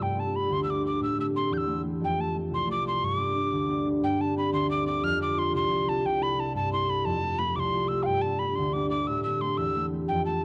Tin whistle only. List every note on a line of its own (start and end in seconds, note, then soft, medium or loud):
0.02 0.21 G5 medium
0.20 0.37 A5 medium
0.36 0.54 B5 medium
0.53 0.63 C6 medium
0.63 0.72 E6 medium
0.70 0.85 D6 medium
0.86 1.01 D6 medium
1.03 1.17 E6 medium
1.20 1.26 E6 medium
1.36 1.55 C6 medium
1.53 1.59 G6 medium
1.58 1.81 E6 medium
2.04 2.22 G5 medium
2.21 2.36 A5 medium
2.54 2.69 C6 medium
2.71 2.86 D6 medium
2.88 3.06 C6 medium
3.04 3.19 C#6 medium
3.19 3.88 D6 medium
4.04 4.22 G5 medium
4.21 4.37 A5 medium
4.38 4.53 B5 medium
4.53 4.69 C6 medium
4.70 4.86 D6 medium
4.87 5.05 D6 medium
5.04 5.21 F6 loud
5.22 5.40 D6 medium
5.38 5.55 C6 medium
5.56 5.90 C6 loud
5.89 6.07 A5 medium
6.06 6.24 G5 medium
6.22 6.41 B5 medium
6.40 6.55 A5 medium
6.56 6.72 A5 medium
6.73 6.91 C6 medium
6.90 7.07 B5 medium
7.05 7.40 A5 loud
7.39 7.57 B5 medium
7.56 7.90 C6 medium
7.56 7.60 D6 medium
7.88 8.04 E6 medium
8.03 8.06 F5 medium
8.03 8.23 G5 medium
8.21 8.40 A5 medium
8.39 8.57 B5 medium
8.55 8.74 C6 medium
8.73 8.89 D6 medium
8.90 9.08 D6 medium
9.07 9.23 E6 medium
9.23 9.42 E6 medium
9.41 9.59 C6 medium
9.57 9.85 E6 medium
10.08 10.25 G5 medium
10.25 10.42 A5 medium